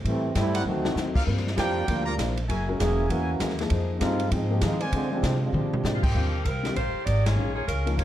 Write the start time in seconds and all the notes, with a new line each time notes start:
0.04 A2 E3 G3 A3 C4, kick, ride
0.09 E4
0.35 G2 A2 G3 A3 C4 E4, kick, snare, hi-hat pedal, ride
0.54 D#4 C5 D5 F#5, ride
0.65 D2 D3 D#3 F#3 A3 C4 F#4
0.69 D#4
0.83 A3 C4 D#4 F#4, snare
0.95 D#2 D3 F#3 C4 D#4, snare, hi-hat pedal
1.14 F4 A#4 D5 F5, kick, crash
1.26 G2 F3 G3 A#3 C4 D4 F4 A#4, kick
1.37 snare
1.47 snare
1.56 F2 G2 F3 A#3 D4 F4 G4 A#4 D5 G5, kick, snare, hi-hat pedal, ride
1.87 D2 G2 F3 G3 A#3 D4 F4, kick, ride
2.06 F4 A#4 D5 A#5
2.18 A#1 G2 F3 A#3 D4, kick, snare, hi-hat pedal, ride
2.37 ride
2.48 F#1 F#3 A#3 E4 F#4 G#4 A#4 E5 G#5, kick, ride
2.67 G#3 C#4 F#4 A#4
2.78 E1 E3 F#3 A#3 C#4 E4 G#4, kick, snare, hi-hat pedal, ride
3.09 E2 E3 F#3 A#3 C#4 E4 F#4 G#4, kick, ride
3.40 D#2 F#3 A#3 E4 G#4, kick, snare, hi-hat pedal, ride
3.50 snare
3.59 F3 A#3 D#4 G#4, snare, ride
3.70 F2 F3 C4 D#4 G#4, kick, ride
3.98 G2 F3 A#3 C4 D#4 F4 G#4, kick, snare, hi-hat pedal, ride
4.02 C4 D#4 G4 G#4
4.20 ride
4.31 G#2 F3 G#3 C4 D#4, kick, ride
4.35 G#4
4.50 F3 A#3 D#4 G4
4.61 D#3 F3 G#3 C4 D#4 F4 G#4, kick, snare, hi-hat pedal, ride
4.80 D#3 F3 G#3 C4 F4 C5 D5 G#5, ride
4.92 D3 F3 G#3 C4 F4, kick, ride
5.11 D3 F3 G3 G#3 C4 D4 F4
5.22 C3 D3 G#3 C4 F4, kick, snare, hi-hat pedal, ride
5.42 G#3 C4 D4 F4
5.53 A#2 F3 G#3 C4 D4 G4, high tom
5.72 muted upright bass stroke, mid tom
5.84 G#2 A#2 G#3 D4 G4, snare, hi-hat pedal
5.95 F4
6.02 F3 A#3 C4 F4 G4 C5 D#5 G5, kick, crash
6.14 D#2 D3 G3 C4 F4
6.45 C2 G3 C4 F4 A#4, kick, hi-hat pedal, ride
6.63 D3 G3 C4 G4, snare, ride
6.76 A#1 A#3 F4 G4 C5, kick, ride
6.94 muted upright bass stroke
7.06 G#1 A#3 D#4 G4 D5, kick, hi-hat pedal, ride
7.26 A#3 F4 G#4 C#5, snare, ride
7.36 A#1 D#3 G#3 C#4 F4
7.55 A#3 F4 G#4 C#5
7.67 C#2 G#3 C#4 F4 A#4, kick, hi-hat pedal, ride
7.85 F3 A#3 D#4 F4, ride
7.97 D#2 A#3 F4 G4 C#5, kick, ride